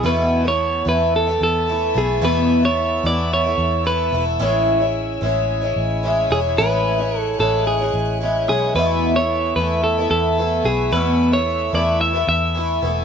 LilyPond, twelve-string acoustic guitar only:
\new Staff \with { instrumentName = "Twelve-string acoustic guitar" } { \time 4/4 \key e \mixolydian \tempo 4 = 110 <e, b, e a b e'>8. <e a b e'>8. <e a b e'>8. <e a b e'>8. <e a b e'>8 <e a b e'>8 | <e, b, e a b e'>8. <e a b e'>8. <e a b e'>8. <e a b e'>8. <e a b e'>8 <e a b e'>8 | <a, e gis cis' e'>8. <gis cis' e'>8. <e gis cis' e'>8. <gis cis' e'>8. <e gis cis' e'>8 <e gis cis' e'>8 | <a, e gis cis' e'>8. <gis cis' e'>8. <e gis cis' e'>8. <gis cis' e'>8. <e gis cis' e'>8 <e gis cis' e'>8 |
<e, b, e a b e'>8. <e a b e'>8. <e a b e'>8. <e a b e'>8. <e a b e'>8 <e a b e'>8 | <e, b, e a b e'>8. <e a b e'>8. <e a b e'>8. <e a b e'>8. <e a b e'>8 <e a b e'>8 | }